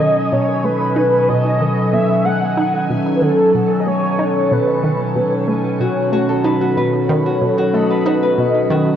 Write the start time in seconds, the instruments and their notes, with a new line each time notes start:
Already playing: ambient pad B2 D#3 F#3 C#4 A4, soft synth lead D#5, synth texture G#5
0.00 synth arpeggio sound D#3
0.32 synth arpeggio sound B2, soft synth lead C#5
0.64 synth arpeggio sound A3, soft synth lead B4
0.96 synth arpeggio sound D#4
1.28 synth arpeggio sound B2, soft synth lead D#5
1.61 synth arpeggio sound D#3
1.93 synth arpeggio sound B2, soft synth lead E5
2.25 synth arpeggio sound A3, soft synth lead F#5
2.57 synth arpeggio sound D#4
2.90 synth arpeggio sound B2
3.15 soft synth lead B4
3.21 synth arpeggio sound D#3, soft synth lead A4
3.54 synth arpeggio sound B2
3.80 soft synth lead D#5
3.87 synth arpeggio sound A3, soft synth lead C#5
4.19 synth arpeggio sound D#4
4.51 synth arpeggio sound B2, soft synth lead B4
4.83 synth arpeggio sound D#3
5.16 synth arpeggio sound B2
5.48 synth arpeggio sound A3
5.80 synth arpeggio sound B2, harp F#4, soft synth lead C#5, synth texture B5
6.12 synth arpeggio sound A3, harp F#4
6.29 harp A4
6.44 synth arpeggio sound D#4, soft synth lead B4, harp B4
6.61 harp F#4
6.77 synth arpeggio sound B2, harp B4
7.09 synth arpeggio sound D#3, soft synth lead C#5
7.26 harp F#4
7.41 synth arpeggio sound B2
7.58 harp F#4
7.74 synth arpeggio sound A3, harp A4, soft synth lead D#5
7.90 harp B4
8.06 synth arpeggio sound D#4, harp F#4, soft synth lead B4
8.23 harp B4
8.38 synth arpeggio sound B2, soft synth lead D#5
8.70 synth arpeggio sound D#3, harp F#4